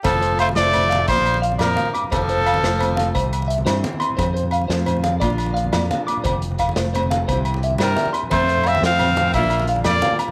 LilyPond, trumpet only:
\new Staff \with { instrumentName = "Trumpet" } { \time 12/8 \key f \major \tempo 4. = 116 a'4 c''8 d''4. c''4 r8 bes'4 r8 | a'2. r2. | r1. | r1 r8 bes'4 r8 |
c''4 e''8 f''4. e''4 r8 d''4 r8 | }